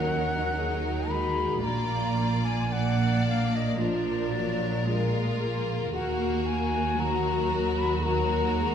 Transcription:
Already playing: double bass section D#2, cello section D#3, viola section F#3, french horn section A#4, violin section A#4, flute F#5
0.02 violin section C#4
0.55 viola section F#3, violin section D#4, french horn section G#4
1.08 viola section G#3, french horn section F#4, flute B5
1.62 double bass section A#1, cello section A#2, viola section A#3, french horn section D4, violin section F4 D5, flute A#5
2.45 flute G#5
2.70 viola section A#3, violin section D4 D5, flute F#5
3.28 flute F5
3.55 flute D#5
3.79 viola section F3, violin section D4 A#4, french horn section F4, flute D5
4.34 viola section F#3
4.86 viola section G#3, violin section F4, french horn section A#4
5.39 viola section A#3, french horn section G#4
5.92 double bass section D#2, cello section D#2, viola section A#3, french horn section F#4, violin section F#4 A#4, flute F#5
6.46 flute G#5
6.98 viola section F#3, french horn section F#4, violin section A#4, flute A#5
7.78 flute B5
8.03 viola section F#3, french horn section A#4, violin section A#4, flute A#5
8.57 viola section G#3, french horn section G#4

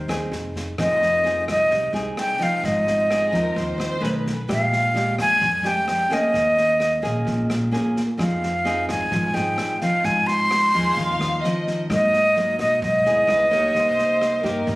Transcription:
Already playing: nylon-string guitar D#3, flute C5
0.08 upright bass D#2, nylon-string guitar C4 D#4 G#4, cross-stick, snare
0.32 upright bass F1, snare
0.56 kick, snare
0.78 upright bass F1, nylon-string guitar F3 C4 D#4 G#4, flute D#5, kick, cross-stick, snare
1.02 snare
1.23 nylon-string guitar C4 D#4 G#4, snare
1.48 upright bass C2, flute D#5, kick, cross-stick, snare
1.70 upright bass C2, nylon-string guitar C3, kick, snare
1.93 upright bass C2, nylon-string guitar C4 D#4 G#4, snare
2.17 flute G5, cross-stick, snare
2.39 nylon-string guitar F3 C4 D#4, kick, snare
2.43 flute F5
2.62 upright bass G#1, nylon-string guitar G#2, flute D#5, kick, snare
2.87 snare
3.08 violin section G#4, cross-stick, snare
3.32 upright bass D#2, nylon-string guitar F3 C4 D#4, violin section A#4, kick, snare
3.55 upright bass D#2, nylon-string guitar D#3, violin section C5, kick, snare
3.78 upright bass D#2, violin section C5, cross-stick, snare
4.00 upright bass B1, nylon-string guitar D#3 A3 C#4, violin section B4, snare
4.26 kick, snare
4.48 upright bass A#1, nylon-string guitar A#2 G#3 D4 G4, kick, cross-stick, snare
4.52 flute F5
4.73 snare
4.94 nylon-string guitar G#3 D4 G4, snare
5.18 upright bass F2, flute G#5, kick, cross-stick, snare
5.41 nylon-string guitar F2, upright bass F2, kick, snare
5.63 upright bass F2, nylon-string guitar G#3 D4 G4, flute G5, snare
5.88 flute G5, cross-stick, snare
6.10 nylon-string guitar A#3 C#4 G#4, flute D#5, kick, snare
6.34 upright bass D#2, nylon-string guitar D#3, kick, snare
6.57 snare
6.80 cross-stick, snare
7.02 upright bass A#1, nylon-string guitar A#3 C#4 G#4, kick, snare
7.25 upright bass A#1, nylon-string guitar A#2, kick, snare
7.49 upright bass A#1, cross-stick, snare
7.71 nylon-string guitar A#3 C#4 G#4, snare
7.96 kick, snare
8.17 upright bass F2, nylon-string guitar F3 C4 D#4 G#4, kick, cross-stick, snare
8.22 flute F5
8.43 snare
8.64 nylon-string guitar C4 D#4 G#4, snare
8.89 upright bass G#1, flute G#5, kick, cross-stick, snare
9.10 upright bass G#1, nylon-string guitar F3, kick, snare
9.34 upright bass G#1, nylon-string guitar C4 D#4 G#4, flute G5, snare
9.58 cross-stick, snare
9.81 nylon-string guitar F3 C4 D#4, flute F5, kick, snare
10.04 nylon-string guitar G#2, upright bass G#2, flute G#5, kick, snare
10.27 flute C6, snare
10.51 cross-stick, snare
10.74 upright bass D#2, nylon-string guitar F3 C4 D#4, violin section G#4, kick, snare
10.96 upright bass D#2, nylon-string guitar D#3, violin section F5, kick, snare
11.19 upright bass D#2, cross-stick, snare
11.44 nylon-string guitar F3 C4 D#4, violin section D#5, snare
11.67 kick, snare
11.90 nylon-string guitar G#2 F#3 A#3 D#4, upright bass G#2, flute D#5, kick, cross-stick, snare
12.13 snare
12.35 nylon-string guitar F#3 A#3 D#4, snare
12.59 upright bass B1, flute D#5, kick, cross-stick, snare
12.81 upright bass B1, nylon-string guitar G#2, flute D#5, kick, snare
13.04 upright bass D#2, nylon-string guitar B3 E4 G#4, snare
13.27 upright bass C#2, violin section B4, cross-stick, snare
13.50 nylon-string guitar A#3 D#4 G4, violin section C#5, kick, snare
13.74 upright bass C2, nylon-string guitar C3, violin section C5, kick, snare
13.98 snare
14.22 cross-stick, snare
14.43 upright bass G2, nylon-string guitar A#3 D#4 G4, violin section A#4, kick, snare
14.66 nylon-string guitar G2, upright bass G2, kick, snare

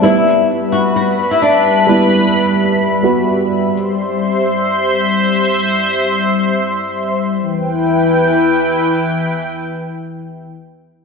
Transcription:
Already playing: analog synth pad G3 E5
0.02 grand piano G3 B3 E4, nylon-string guitar E4, analog synth pad B4 B5
0.72 nylon-string guitar F#4
0.96 nylon-string guitar F#4
1.31 nylon-string guitar E4
1.42 nylon-string guitar D4
1.87 grand piano G3 B3 E4
3.03 grand piano G3 B3 F#4
3.72 analog synth pad C5 E5 C6
7.42 analog synth pad E3 E4 B4 G5

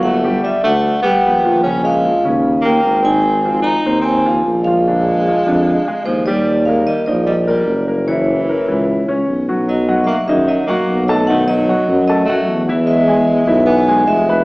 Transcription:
Already playing: tuba G1, grand piano F#3 F#4
0.03 tenor saxophone A3, vibraphone F#5
0.24 grand piano G3 G4
0.43 tenor saxophone G3, vibraphone E5
0.64 tuba D2, tenor saxophone A3, grand piano D4 D5, vibraphone F#5
1.02 grand piano G3 G4, tenor saxophone B3, vibraphone G5
1.24 tuba A#1
1.44 grand piano F3 F4
1.63 grand piano C#3 C#4, tenor saxophone C#4, vibraphone G#5
1.84 tenor saxophone G#3, vibraphone F5
2.05 grand piano F3 F4
2.24 tuba D#2, grand piano C#3 C#4
2.61 tenor saxophone A#3
2.65 grand piano A#3 A#4, vibraphone G5
2.84 tuba G#1
3.02 grand piano D#3 D#4, tenor saxophone C4, vibraphone G#5
3.45 grand piano F3 F4
3.62 tenor saxophone D#4, vibraphone A#5
3.86 tuba D#2, grand piano C4 C5
4.01 tenor saxophone C4, vibraphone G#5
4.26 grand piano F3 F4
4.46 tuba A#1
4.63 tenor saxophone G#3, vibraphone F5
4.67 grand piano F3 F4
4.88 grand piano D3 D4
5.27 grand piano F3 F4
5.46 tuba F2, grand piano D3 D4
5.88 grand piano G#3 G#4
6.05 tuba D#2, tenor saxophone F3, vibraphone C5
6.26 tenor saxophone G3, grand piano G3 G4, vibraphone D5
6.65 tenor saxophone G#3, grand piano A#3 A#4, vibraphone F5
6.87 tenor saxophone G3, vibraphone D#5
7.06 tuba A#1, tenor saxophone F3, grand piano D#4 D#5, vibraphone D5
7.26 tenor saxophone G3, vibraphone D#5
7.47 tenor saxophone G3, grand piano A#3 A#4, vibraphone D5
7.67 tuba F#1
7.88 grand piano A#3 A#4
8.07 tenor saxophone E3, grand piano E3 E4, vibraphone C#5
8.49 grand piano A#3 A#4
8.67 tuba C#2, grand piano E3 E4
9.08 tuba C#2, grand piano C#4 C#5
9.28 tuba B1
9.49 grand piano F#3 F#4
9.68 tenor saxophone F#3, vibraphone D#5
9.88 grand piano F#3 F#4 F#5
10.03 tenor saxophone G#3 A#3, vibraphone E5
10.09 vibraphone F#5
10.27 tuba F#2, grand piano D#3 D#4 D#5, tenor saxophone G#3, vibraphone E5
10.47 tenor saxophone F#3, vibraphone D#5
10.67 grand piano F#3 F#4 F#5, tenor saxophone A#3, vibraphone F#5
10.88 tuba B1
11.06 tenor saxophone F#3, grand piano A3 A4 A5, vibraphone D#5
11.27 grand piano D#3 D#4 D#5, tenor saxophone A3, vibraphone F#5
11.46 tenor saxophone F#3, vibraphone D#5
11.69 grand piano F#3 F#4 F#5
11.88 tuba F#2
12.06 tenor saxophone F#3, grand piano A3 A4 A5, vibraphone D#5
12.25 tuba F#2, grand piano F#3 F#4, tenor saxophone A3, vibraphone F#5
12.30 grand piano F#5
12.48 tuba E2
12.68 grand piano E3 E4 E5
12.85 tenor saxophone G#3, vibraphone E5
13.08 grand piano G#3 G#4 G#5
13.47 tuba B1, grand piano E3 E4 E5
13.66 tenor saxophone B3, vibraphone G#5
13.88 grand piano G#3 G#4 G#5
14.06 tuba F1, tenor saxophone G#3, vibraphone E5
14.29 grand piano B3 B4 B5

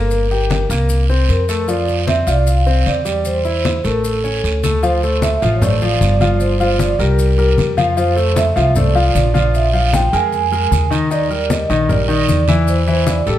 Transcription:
Already playing: upright bass G1, grand piano A#3 A#4, vibraphone A#4
0.11 high conga, long guiro, maracas
0.31 grand piano G4 G5, high conga, maracas
0.50 high conga, short guiro, maracas
0.70 upright bass C2, grand piano A#3 A#4, short guiro, maracas
0.89 high conga, long guiro, maracas
1.09 grand piano C4 C5, high conga, maracas
1.29 upright bass F2, vibraphone A#4, high conga, short guiro, maracas
1.49 grand piano A3 A4, short guiro, maracas
1.68 grand piano F3 F4, vibraphone D5, high conga, long guiro, maracas
1.88 high conga, maracas
2.07 grand piano C4 C5, vibraphone E5, high conga, short guiro, maracas
2.27 upright bass C2, grand piano F4 F5, vibraphone D5, high conga, short guiro, maracas
2.47 vibraphone F5, high conga, long guiro, maracas
2.66 grand piano C4 C5, high conga, maracas
2.86 upright bass E2, vibraphone D5, high conga, short guiro, maracas
3.05 grand piano G3 G4, high conga, short guiro, maracas
3.25 vibraphone C5, high conga, long guiro, maracas
3.45 grand piano E4 E5, high conga, maracas
3.65 high conga, short guiro, maracas
3.84 upright bass A1, grand piano A3 A4, vibraphone A#4, short guiro, maracas
4.04 vibraphone A4, high conga, long guiro, maracas
4.24 grand piano C#4 C#5, high conga, maracas
4.44 upright bass D2, high conga, short guiro, maracas
4.63 grand piano A3 A4, high conga, short guiro, maracas
4.83 grand piano F3 F4 F5, vibraphone C5, high conga, long guiro, maracas
5.03 grand piano A3 A4 C5, high conga, maracas
5.22 vibraphone E5, high conga, short guiro, maracas
5.42 upright bass A1, grand piano F3 F4 F5, short guiro, maracas
5.55 vibraphone C#5
5.62 grand piano A3 A4 C5, vibraphone D5, high conga, low conga, long guiro, maracas
5.81 grand piano F3 F4 F5, high conga, maracas
6.01 upright bass G1, vibraphone D5, high conga, short guiro, maracas
6.20 grand piano F3 F4 F5, high conga, short guiro, maracas
6.40 vibraphone C5, high conga, long guiro, maracas
6.60 grand piano F3 F4 F5, vibraphone C5, high conga, maracas
6.79 vibraphone D5, high conga, short guiro, maracas
6.99 upright bass C2, grand piano G3 G4 A#4, vibraphone A#4, high conga, short guiro, maracas
7.19 high conga, long guiro, maracas
7.38 grand piano G3 G4 A#4, high conga, maracas
7.58 upright bass F2, high conga, short guiro, maracas
7.77 grand piano F3 F4 F5, high conga, short guiro, maracas
7.97 grand piano F3 F4 F5, vibraphone C5, high conga, long guiro, maracas
8.16 grand piano A3 A4 C5, high conga, maracas
8.36 vibraphone E5, high conga, short guiro, maracas
8.56 upright bass C2, grand piano F3 F4 F5, short guiro, maracas
8.76 grand piano A3 A4 C5, vibraphone D5, high conga, low conga, long guiro, maracas
8.95 grand piano F3 F4 F5, high conga, maracas
9.15 upright bass A#1, vibraphone D5, high conga, short guiro, maracas
9.34 grand piano F3 F4 F5, high conga, short guiro, maracas
9.54 vibraphone E5, high conga, long guiro, maracas
9.73 grand piano F3 F4 F5, vibraphone F5, high conga, maracas
9.93 vibraphone G5, high conga, short guiro, maracas
10.12 upright bass F2, grand piano G#3 G#4 A#4, vibraphone G#5, high conga, short guiro, maracas
10.32 high conga, long guiro, maracas
10.52 grand piano G#3 G#4 A#4, high conga, maracas
10.71 upright bass D#2, high conga, short guiro, maracas
10.90 grand piano D#3 D#4 D#5, high conga, short guiro, maracas
11.10 grand piano D#3 D#4 D#5, vibraphone D5, high conga, long guiro, maracas
11.30 grand piano G3 G4 A#4, high conga, maracas
11.50 vibraphone D#5, high conga, short guiro, maracas
11.69 upright bass A#1, grand piano D#3 D#4 D#5, short guiro, maracas
11.89 grand piano G3 G4 A#4, vibraphone D5, high conga, low conga, long guiro, maracas
12.08 grand piano D#3 D#4 D#5, high conga, maracas
12.28 upright bass E2, vibraphone D5, high conga, short guiro, maracas
12.48 grand piano E3 E4 E5, high conga, short guiro, maracas
12.67 vibraphone C5, high conga, long guiro, maracas
12.87 grand piano E3 E4 E5, vibraphone C5, high conga, maracas
13.07 vibraphone D5, high conga, short guiro, maracas
13.26 upright bass A1, grand piano G3 G4 A4, vibraphone A4, high conga, short guiro, maracas

